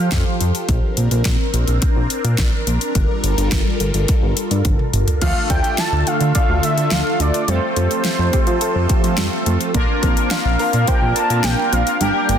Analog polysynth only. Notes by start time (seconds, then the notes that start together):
5.22 A3 D4 F4 A4
7.48 A3 C4 F4 A4
9.75 A#3 D4 F4 A#4
12.01 A#3 D4 G4 A#4